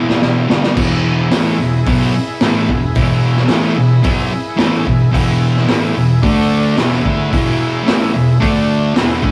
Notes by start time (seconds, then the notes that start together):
Already playing: E2 B2 E3 E4 G#4 B4
0.09 snare
0.22 E2 B2 E3, snare
0.48 G2 D3 G3, snare
0.63 snare
0.75 E2 B2 E3 E4 G#4 B4, kick, crash
1.31 A2 E3 A3, snare, open hi-hat
1.60 E2 B2
1.86 B2 F#3 B3, kick, open hi-hat
2.41 A2 E3 A3, snare, open hi-hat
2.69 E2 B2, kick
2.95 E2 B2 E3, kick, open hi-hat
3.36 snare
3.49 A2 E3 A3, snare, open hi-hat
3.77 E2 B2
4.03 B2 F#3 B3, kick, open hi-hat
4.57 A2 E3 A3, snare, open hi-hat
4.86 E2 B2, kick
5.11 E2 B2 E3 E4 G#4, kick, open hi-hat
5.16 B4
5.56 snare
5.67 A2 E3 A3, snare, open hi-hat
5.95 E2 B2
6.22 D3 A3 D4 A4 D5, kick, open hi-hat
6.77 E2 B2 E3 E4 G#4 B4, snare, open hi-hat
7.03 D3 A3 D4, kick
7.31 E2 B2 E3, kick, open hi-hat
7.84 A2 E3 A3
7.88 snare, open hi-hat
8.13 E2 B2
8.40 D3 A3 D4 A4 D5, kick, open hi-hat
8.94 E2 B2 E3 E4 B4, snare, open hi-hat
8.98 G#4
9.23 D3 A3 D4, kick